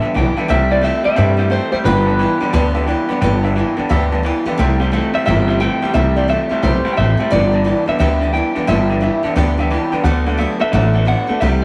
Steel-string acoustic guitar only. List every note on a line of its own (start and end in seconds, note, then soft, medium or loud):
0.02 0.13 E3 soft
0.02 0.14 G3 soft
0.02 0.15 B3 soft
0.02 0.15 G4 medium
0.14 0.37 E3 medium
0.14 0.37 G3 medium
0.14 0.37 B3 medium
0.14 0.36 G4 medium
0.37 0.48 E3 medium
0.37 0.49 G3 soft
0.37 0.49 B3 medium
0.37 0.49 G4 medium
0.48 0.71 C3 medium
0.48 0.71 E3 medium
0.48 0.71 A3 medium
0.48 0.70 E4 medium
0.48 0.69 G4 medium
0.70 0.82 A3 soft
0.70 0.83 E4 soft
0.70 0.83 G4 medium
0.82 1.04 E3 medium
0.82 1.05 A3 medium
0.82 1.04 E4 medium
0.82 1.03 G4 medium
1.04 1.16 A3 soft
1.04 1.17 E4 soft
1.04 1.17 G4 medium
1.16 1.39 C3 medium
1.16 1.39 E3 medium
1.16 1.39 A3 medium
1.16 1.37 E4 medium
1.16 1.36 G4 medium
1.37 1.50 A3 soft
1.37 1.50 E4 medium
1.37 1.50 G4 medium
1.50 1.72 E3 medium
1.50 1.73 A3 medium
1.50 1.73 E4 medium
1.50 1.71 G4 medium
1.72 1.86 A3 soft
1.72 1.86 E4 medium
1.72 1.85 G4 medium
1.85 2.07 G2 medium
1.85 2.07 D3 medium
1.85 2.08 E3 medium
1.85 2.08 G3 medium
1.85 2.07 B3 medium
1.85 2.06 G4 medium
2.07 2.18 E3 soft
2.07 2.19 G3 soft
2.07 2.20 B3 soft
2.07 2.20 G4 soft
2.19 2.41 E3 medium
2.19 2.42 G3 medium
2.19 2.40 B3 medium
2.19 2.39 G4 medium
2.40 2.52 E3 soft
2.40 2.53 G3 medium
2.40 2.53 B3 medium
2.40 2.53 G4 medium
2.53 2.75 G2 medium
2.53 2.75 D3 medium
2.53 2.75 E3 medium
2.53 2.75 G3 loud
2.53 2.75 B3 loud
2.53 2.73 G4 loud
2.75 2.86 E3 soft
2.75 2.87 G3 medium
2.75 2.88 B3 medium
2.75 2.87 G4 medium
2.87 3.10 E3 medium
2.87 3.10 G3 medium
2.87 3.09 B3 medium
2.87 3.08 G4 medium
3.09 3.21 E3 soft
3.09 3.22 G3 medium
3.09 3.22 B3 medium
3.09 3.22 G4 medium
3.22 3.44 G2 loud
3.22 3.44 D3 medium
3.22 3.44 E3 medium
3.22 3.44 G3 medium
3.22 3.44 B3 loud
3.22 3.43 G4 loud
3.44 3.55 E3 soft
3.44 3.57 G3 soft
3.44 3.57 B3 soft
3.44 3.56 G4 medium
3.56 3.78 E3 medium
3.56 3.78 G3 medium
3.56 3.77 B3 medium
3.56 3.75 G4 medium
3.77 3.89 E3 soft
3.77 3.90 G3 medium
3.77 3.90 B3 soft
3.77 3.90 G4 medium
3.89 4.12 G2 medium
3.89 4.12 D3 medium
3.89 4.12 E3 medium
3.89 4.13 G3 medium
3.89 4.11 B3 medium
3.89 4.11 G4 loud
4.12 4.22 E3 soft
4.12 4.23 G3 soft
4.12 4.25 B3 medium
4.12 4.24 G4 medium
4.23 4.46 E3 medium
4.23 4.46 G3 medium
4.23 4.45 B3 medium
4.23 4.44 G4 medium
4.46 4.58 E3 medium
4.46 4.59 G3 medium
4.46 4.58 B3 medium
4.46 4.58 G4 medium
4.58 4.80 C3 loud
4.58 4.81 E3 medium
4.58 4.81 A3 loud
4.58 4.80 E4 medium
4.58 4.78 G4 loud
4.79 4.92 A3 medium
4.79 4.92 E4 medium
4.79 4.92 G4 medium
4.92 5.14 E3 medium
4.92 5.15 A3 medium
4.92 5.14 E4 medium
4.92 5.12 G4 medium
5.14 5.26 A3 soft
5.14 5.27 E4 soft
5.14 5.26 G4 medium
5.26 5.48 C3 medium
5.26 5.48 E3 medium
5.26 5.49 A3 medium
5.26 5.49 E4 medium
5.26 5.47 G4 medium
5.48 5.59 A3 soft
5.48 5.61 E4 medium
5.48 5.61 G4 medium
5.60 5.82 E3 medium
5.60 5.83 A3 medium
5.60 5.83 E4 medium
5.60 5.81 G4 medium
5.82 5.94 A3 medium
5.82 5.94 E4 medium
5.82 5.95 G4 medium
5.94 6.16 C3 medium
5.94 6.16 E3 medium
5.94 6.17 A3 medium
5.94 6.16 E4 medium
5.94 6.15 G4 medium
6.16 6.28 A3 soft
6.16 6.29 E4 soft
6.16 6.29 G4 medium
6.28 6.50 E3 medium
6.28 6.51 A3 medium
6.28 6.50 E4 medium
6.28 6.48 G4 medium
6.49 6.63 A3 soft
6.49 6.63 E4 medium
6.49 6.62 G4 medium
6.63 6.85 C3 medium
6.63 6.86 E3 medium
6.63 6.86 A3 medium
6.63 6.86 E4 medium
6.63 6.84 G4 medium
6.85 6.96 A3 soft
6.85 6.98 E4 medium
6.85 6.97 G4 medium
6.97 7.19 E3 medium
6.97 7.19 A3 medium
6.97 7.18 E4 medium
6.97 7.16 G4 medium
7.17 7.31 A3 medium
7.17 7.32 E4 soft
7.17 7.31 G4 medium
7.30 7.53 G2 medium
7.30 7.53 D3 medium
7.30 7.53 E3 medium
7.30 7.52 G3 medium
7.30 7.51 B3 medium
7.30 7.50 G4 medium
7.51 7.63 E3 soft
7.51 7.64 G3 soft
7.51 7.65 B3 soft
7.51 7.64 G4 medium
7.64 7.87 E3 medium
7.64 7.87 G3 medium
7.64 7.86 B3 medium
7.64 7.85 G4 medium
7.86 7.99 E3 soft
7.86 7.99 G3 soft
7.86 8.00 B3 medium
7.86 7.99 G4 medium
7.99 8.21 G2 medium
7.99 8.22 D3 medium
7.99 8.22 E3 medium
7.99 8.22 G3 medium
7.99 8.21 B3 medium
7.99 8.21 G4 medium
8.22 8.32 E3 soft
8.22 8.33 G3 soft
8.22 8.35 B3 soft
8.22 8.34 G4 medium
8.34 8.56 E3 medium
8.34 8.56 G3 medium
8.34 8.55 B3 medium
8.34 8.54 G4 medium
8.56 8.67 E3 soft
8.56 8.67 G3 soft
8.56 8.68 B3 medium
8.56 8.68 G4 medium
8.67 8.90 G2 medium
8.67 8.90 D3 medium
8.67 8.90 E3 medium
8.67 8.90 G3 medium
8.67 8.89 B3 medium
8.67 8.88 G4 medium
8.89 8.99 E3 soft
8.89 9.01 G3 soft
8.89 9.01 B3 soft
8.89 9.02 G4 medium
9.01 9.23 E3 medium
9.01 9.24 G3 medium
9.01 9.23 B3 medium
9.01 9.22 G4 medium
9.23 9.35 E3 soft
9.23 9.36 G3 medium
9.23 9.37 B3 medium
9.23 9.36 G4 medium
9.36 9.58 G2 medium
9.36 9.58 D3 medium
9.36 9.59 E3 medium
9.36 9.59 G3 medium
9.36 9.58 B3 loud
9.36 9.56 G4 loud
9.57 9.69 E3 medium
9.57 9.71 G3 medium
9.57 9.71 B3 medium
9.57 9.70 G4 medium
9.71 9.93 E3 medium
9.71 9.93 G3 medium
9.71 9.92 B3 medium
9.71 9.91 G4 medium
9.92 10.05 E3 medium
9.92 10.05 G3 medium
9.92 10.05 B3 medium
9.92 10.05 G4 medium
10.04 10.27 D3 medium
10.04 10.27 F#3 medium
10.04 10.27 A3 medium
10.04 10.27 B3 medium
10.04 10.25 F#4 loud
10.26 10.37 A3 soft
10.26 10.39 B3 medium
10.26 10.39 F#4 medium
10.38 10.60 F#3 medium
10.38 10.61 A3 medium
10.38 10.60 B3 medium
10.38 10.58 F#4 medium
10.59 10.72 A3 soft
10.59 10.73 B3 soft
10.59 10.73 F#4 medium
10.73 10.95 D3 medium
10.73 10.95 F#3 medium
10.73 10.95 A3 medium
10.73 10.94 B3 medium
10.73 10.92 F#4 medium
10.93 11.05 A3 soft
10.93 11.06 B3 medium
10.93 11.07 F#4 soft
11.05 11.28 F#3 medium
11.05 11.29 A3 medium
11.05 11.28 B3 medium
11.05 11.26 F#4 medium
11.27 11.40 A3 soft
11.27 11.42 B3 medium
11.27 11.41 F#4 medium
11.41 11.63 C3 medium
11.41 11.64 E3 medium
11.41 11.64 A3 medium
11.41 11.64 E4 medium
11.41 11.61 G4 medium